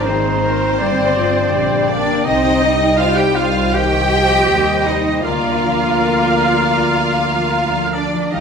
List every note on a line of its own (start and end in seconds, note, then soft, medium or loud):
0.00 0.77 G#1 medium
0.00 0.83 G#2 medium
0.00 0.83 D#3 medium
0.00 0.83 A#3 medium
0.00 0.25 C4 medium
0.06 0.81 D#3 medium
0.06 1.89 C4 medium
0.06 0.43 G#4 medium
0.06 0.84 A#4 medium
0.06 1.89 C5 medium
0.06 0.79 C5 medium
0.06 0.80 C5 medium
0.06 1.90 C5 medium
0.06 0.79 A#5 medium
0.27 1.16 C4 medium
0.44 0.81 A#4 medium
0.44 1.70 C5 medium
0.62 0.83 A#5 medium
0.79 1.53 G1 medium
0.79 2.30 G2 medium
0.79 1.16 G3 medium
0.79 1.54 C5 medium
0.79 2.26 D5 medium
0.79 1.52 D5 medium
0.79 2.24 G5 medium
1.00 2.30 D3 soft
1.17 1.53 F3 medium
1.17 2.62 C4 medium
1.35 2.29 D4 medium
1.52 2.25 A#1 medium
1.52 1.89 G3 medium
1.52 2.99 G4 medium
1.52 1.89 D5 medium
1.72 3.18 C5 medium
1.88 2.26 A#3 medium
1.88 2.26 D4 loud
1.88 2.26 D5 medium
1.88 2.27 D5 medium
2.08 3.55 G5 medium
2.24 4.45 C2 medium
2.24 5.28 C3 medium
2.24 2.63 C4 medium
2.24 2.98 D#4 medium
2.24 2.63 C5 medium
2.24 2.73 D#5 medium
2.24 3.45 D#5 medium
2.24 2.98 D#5 medium
2.24 2.62 D#5 medium
2.24 2.98 D#5 medium
2.24 3.44 G5 medium
2.45 4.49 G3 medium
2.63 3.74 G3 medium
2.63 4.31 C4 medium
2.63 3.00 D#5 medium
2.82 5.28 D#4 soft
2.97 3.18 F4 medium
2.97 4.11 G4 medium
2.97 3.73 C5 medium
2.97 3.18 F5 medium
2.97 3.19 F5 medium
3.17 3.37 G4 medium
3.17 3.92 C5 medium
3.17 3.37 G5 medium
3.17 3.36 G5 medium
3.17 3.37 G5 medium
3.35 3.73 F4 medium
3.35 3.74 D#5 medium
3.35 3.76 F5 medium
3.35 3.74 F5 medium
3.35 3.75 F5 medium
3.56 5.28 G5 medium
3.73 4.11 D#3 medium
3.73 4.86 G4 loud
3.73 4.86 C5 medium
3.73 5.27 D#5 medium
3.73 5.28 D#5 medium
3.73 4.87 G5 medium
3.73 4.89 G5 medium
3.73 5.21 G5 medium
3.73 4.87 G5 loud
3.93 5.28 C5 medium
4.12 4.49 F3 medium
4.12 5.28 G4 soft
4.32 4.68 C4 soft
4.48 5.24 D#2 medium
4.48 5.23 G3 medium
4.48 4.87 G3 medium
4.48 4.86 D#5 medium
4.69 5.06 C4 soft
4.86 5.29 G3 soft
4.86 5.24 D#4 medium
4.86 5.25 C5 medium
4.86 5.24 D#5 medium
4.86 5.25 D#5 medium
4.86 5.24 D#5 medium
5.08 5.29 C4 soft
5.24 8.09 D2 medium
5.24 8.37 D3 medium
5.24 7.94 A#3 medium
5.24 7.90 F4 medium
5.24 8.08 A#4 medium
5.24 8.12 D5 medium
5.24 7.90 F5 medium
5.24 7.95 F5 medium
5.24 8.00 F5 medium
5.24 7.91 F5 medium
5.24 7.96 A#5 medium
5.46 7.54 D4 soft
5.65 7.35 F3 soft
5.83 6.21 F4 soft
6.22 6.96 F4 soft
6.41 6.77 F5 soft
6.78 8.40 F5 medium
6.97 8.40 F4 soft
7.17 8.40 A#4 soft
7.36 7.74 F3 soft
7.56 7.93 D4 soft
7.75 8.12 F3 soft
7.94 8.32 D4 medium
7.94 8.36 D4 soft
7.94 8.30 D5 medium
7.94 8.33 D5 medium
8.14 8.40 F3 soft
8.31 8.40 D#2 medium
8.31 8.40 D#3 medium
8.31 8.40 G3 medium
8.31 8.40 D#4 medium
8.31 8.40 G4 medium
8.31 8.40 D#5 medium
8.31 8.40 F5 medium
8.31 8.40 G5 medium